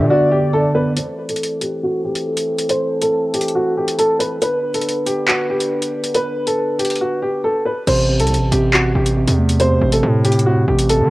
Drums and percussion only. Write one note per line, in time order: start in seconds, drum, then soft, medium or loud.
0.97 closed hi-hat medium
1.29 closed hi-hat medium
1.36 closed hi-hat medium
1.43 closed hi-hat medium
1.61 closed hi-hat medium
2.15 closed hi-hat medium
2.37 closed hi-hat medium
2.58 closed hi-hat medium
2.69 closed hi-hat medium
3.02 closed hi-hat medium
3.34 closed hi-hat medium
3.41 closed hi-hat medium
3.48 closed hi-hat soft
3.88 closed hi-hat medium
3.99 closed hi-hat medium
4.20 closed hi-hat medium
4.42 closed hi-hat medium
4.74 closed hi-hat medium
4.81 closed hi-hat medium
4.89 closed hi-hat medium
5.07 closed hi-hat medium
5.28 clap loud
5.61 closed hi-hat medium
5.82 closed hi-hat medium
6.04 closed hi-hat medium
6.15 closed hi-hat medium
6.47 closed hi-hat medium
6.79 closed hi-hat medium
6.85 closed hi-hat medium
6.90 closed hi-hat soft
6.95 closed hi-hat soft
7.87 closed hi-hat medium
7.87 crash medium
8.20 closed hi-hat medium
8.27 closed hi-hat medium
8.34 closed hi-hat medium
8.52 closed hi-hat medium
8.74 clap loud
9.06 closed hi-hat medium
9.27 closed hi-hat medium
9.49 closed hi-hat medium
9.60 closed hi-hat medium
9.92 closed hi-hat medium
10.25 closed hi-hat medium
10.32 closed hi-hat medium
10.39 closed hi-hat soft
10.79 closed hi-hat medium
10.89 closed hi-hat medium